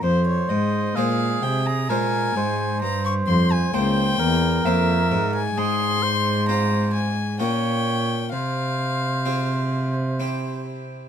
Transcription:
<<
  \new Staff \with { instrumentName = "Violin" } { \time 3/4 \key f \minor \tempo 4 = 65 c''16 des''16 ees''8 f''8 g''16 bes''16 aes''4 | bes''16 des'''16 c'''16 aes''16 g''4 e''8. aes''16 | c'''4 bes''8 aes''8 g''4 | f''2 r4 | }
  \new Staff \with { instrumentName = "Oboe" } { \time 3/4 \key f \minor c''4 aes'4 bes'8 c''8~ | c''4 c''8 bes'4. | aes'8 c''4 r8 des''4 | c''2~ c''8 r8 | }
  \new Staff \with { instrumentName = "Harpsichord" } { \time 3/4 \key f \minor r4 <aes f' c''>4 <aes f' c''>4 | r4 <bes e' c''>4 <bes e' c''>4 | aes4 <c' f' c''>4 <des' f' bes'>4 | r4 <c' f' aes'>4 <c' e' g'>4 | }
  \new Staff \with { instrumentName = "Harpsichord" } { \clef bass \time 3/4 \key f \minor f,8 aes,8 bes,8 c8 bes,8 aes,8 | g,8 f,8 des,8 e,8 f,8 aes,8 | aes,2 bes,4 | c2. | }
  \new Staff \with { instrumentName = "Cello" } { \clef bass \time 3/4 \key f \minor f,8 aes,8 bes,8 c8 bes,8 aes,8 | g,8 f,8 des,8 e,8 f,8 aes,8 | aes,2 bes,4 | c2. | }
>>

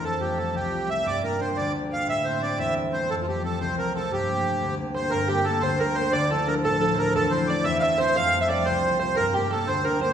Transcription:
<<
  \new Staff \with { instrumentName = "Accordion" } { \time 6/8 \key g \dorian \tempo 4. = 118 a'8 g'8 a'8 g'4 e''8 | d''8 bes'8 c''8 d''8 r8 f''8 | e''8 c''8 d''8 e''8 r8 c''8 | a'16. f'32 g'8 a'8 c''8 bes'8 a'8 |
g'2 r8 c''8 | bes'8 g'8 a'8 c''8 bes'8 c''8 | d''8 a'8 bes'8 a'4 bes'8 | a'8 c''8 d''8 e''16. f''32 e''8 c''8 |
f''8. e''16 d''8 c''4 c''8 | bes'8 g'8 a'8 c''8 bes'8 c''8 | }
  \new Staff \with { instrumentName = "Five-string banjo" } { \time 6/8 \key g \dorian r2. | r2. | r2. | r2. |
r2 r8 c''8 | bes'8 g'8 a'8 c''8 bes'8 c''8 | d''8 a'8 bes'8 a'8 a'16. c''32 bes'8 | a'4 d''8 e''8 e''8 c''8 |
f''8. e''16 d''8 c''4 c''8 | bes'8 g'8 a'8 c''8 bes'8 c''8 | }
  \new Staff \with { instrumentName = "Harp" } { \time 6/8 \key g \dorian f,8 <g a f'>8 <g a f'>8 c,8 <g a f'>8 <g a f'>8 | g,8 <g bes d'>8 <g bes d'>8 d,8 <g bes d'>8 <g bes d'>8 | a,8 <g a c'>8 <g a c'>8 e,8 <g a c'>8 <g a c'>8 | f,8 <f a c'>8 <f a c'>8 c,8 <f a c'>8 <f a c'>8 |
g,8 <g a bes>8 <g a bes>8 d,8 <g a bes>8 <g a bes>8 | g,8 <g a bes>8 <g a bes>8 d,8 <g a bes>8 <g a bes>8 | d,8 <f d' e'>8 <f d' e'>8 a,8 <f d' e'>8 <f d' e'>8 | e,8 <a c' e'>8 <a c' e'>8 e,8 <a c' e'>8 <a c' e'>8 |
f,8 <g a f'>8 <g a f'>8 c,8 <g a f'>8 <g a f'>8 | g,8 <g bes d'>8 <g bes d'>8 d,8 <g bes d'>8 <g bes d'>8 | }
>>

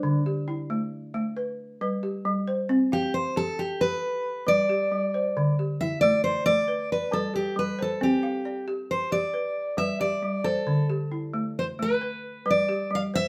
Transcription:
<<
  \new Staff \with { instrumentName = "Steel-string acoustic guitar" } { \time 12/8 \key g \mixolydian \tempo 4. = 90 d'8 r1 r4. | r8 g'8 c''8 a'8 g'8 b'4. d''2~ | d''8 r8 e''8 d''8 c''8 d''4 b'8 a'8 g'8 b'8 a'8 | g'4. r8 c''8 d''4. e''8 d''4 a'8~ |
a'8 r4. c''8 b'4. d''4 f''8 e''8 | }
  \new Staff \with { instrumentName = "Balafon" } { \time 12/8 \key g \mixolydian c''8 g'8 e'4. r8 b'4 b'8 g'4 c''8~ | c''8 f''4. r2 b'8 g'4 c''8~ | c''8 g'8 e'4. r8 b'4 b'8 g'4 c''8~ | c''8 f''8 d''4. r8 b'4 b'8 g'4 c''8~ |
c''8 g'8 e'4. r8 b'4 b'8 g'4 c''8 | }
  \new Staff \with { instrumentName = "Balafon" } { \clef bass \time 12/8 \key g \mixolydian d4 r8 a4 a8 r4 g4 g4 | c'4 r8 g'4 g'8 r4 g4 g4 | d4 r8 a4 a8 r4 g4 g4 | c'4 r8 g'4 g'8 r4 g4 g4 |
d4 r8 a4 a8 r4 g4 g4 | }
>>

